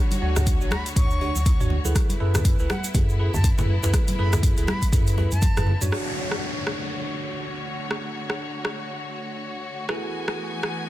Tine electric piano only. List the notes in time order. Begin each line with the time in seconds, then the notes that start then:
Already playing: D4 F#4 C#5
0.22 D4 F#4 C#5
0.61 D4 F#4 C#5
0.96 D4 F#4 C#5
1.21 D4 F#4 C#5
1.60 D4 F#4 C#5
1.85 E4 G#4 A4 B4
2.20 E4 G#4 A4 B4
2.60 E4 G#4 A4 B4
2.95 E4 G#4 A4 B4
3.19 E4 G#4 A4 B4
3.58 E4 G#4 A4 B4
3.83 E4 G#4 A4 B4
4.19 E4 G#4 A4 B4
4.58 E4 G#4 A4 B4
4.93 E4 G#4 A4 B4
5.18 E4 G#4 A4 B4
5.57 E4 G#4 A4 B4
5.81 D4 F#4 C#5
5.92 D4 F#4 C#5
9.89 E4 F#4 G#4 A4 B4